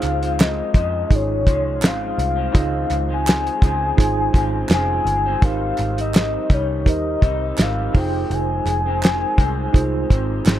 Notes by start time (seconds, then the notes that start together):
Already playing: C#3 F3 G#3 C4 D#4 F4 G#4 C5 F5
0.02 C#2, clap, closed hi-hat
0.22 F3 G#3 C4, closed hi-hat
0.39 D#5, snare, clap, closed hi-hat
0.74 F2 C#3 F3 G#3, kick, closed hi-hat
1.10 G#1 D#4 F4 G#4, kick, closed hi-hat
1.15 C#5
1.46 C2 F3 G#3, kick, closed hi-hat
1.81 G#1 C#3 F3 G#3 C4, snare, clap, closed hi-hat
1.86 F5
2.18 C2, closed hi-hat
2.36 F3 G#3 C4
2.52 C#2 C#3 F3 G#3 C4 D#4 F4 G#4 D#5, kick, closed hi-hat
2.58 F5
2.90 C#2, clap, closed hi-hat
3.09 F3 G#3 C4
3.13 G#5
3.27 snare, clap, closed hi-hat
3.47 closed hi-hat
3.61 C#2 C#3 F3 G#3 C4, kick, closed hi-hat
3.97 G#1 D#4 F4 G#4 C5, kick, closed hi-hat
4.33 G#1 C#3 F3 G#3 C4, kick, closed hi-hat
4.69 F1 C#3 F3 G#3 G#5, snare, clap, closed hi-hat
4.73 C4
5.05 G1, closed hi-hat
5.26 F3 G#3 C4
5.42 G#1 G#2 D#3 G3 C4 D#4 G4 A#4 C5 F5, kick, closed hi-hat
5.78 G#1, clap, closed hi-hat
5.97 G3 C4 D#4, closed hi-hat
6.01 D#5
6.14 snare, clap, closed hi-hat
6.50 C2 D#3 G3 D#4 C#5, kick, closed hi-hat
6.86 D#2 D#4 G4 A#4 C5 D#5, kick, closed hi-hat
7.21 C2 D#3 G3 C4 D#4, kick, closed hi-hat
7.58 G#1 D#3 G3 C4 D#4, snare, clap, closed hi-hat
7.62 F5
7.93 F1 F2 C3 D#3 G#3 C4 D#4 F4 G#4, kick, open hi-hat
7.97 C5 G5
8.30 F1, closed hi-hat
8.34 G#5
8.66 F1, clap, closed hi-hat
8.86 D#3 G#3 C4
9.03 snare, clap, closed hi-hat
9.37 C2 C3 D#3 G#3 C4, kick, closed hi-hat
9.73 C2 D#4 F4 G#4 C5, kick, closed hi-hat
10.10 G#1 C3 D#3 G#3 C4, kick, closed hi-hat
10.46 G#1 C3 D#3 G#3, snare, clap, closed hi-hat
10.51 C4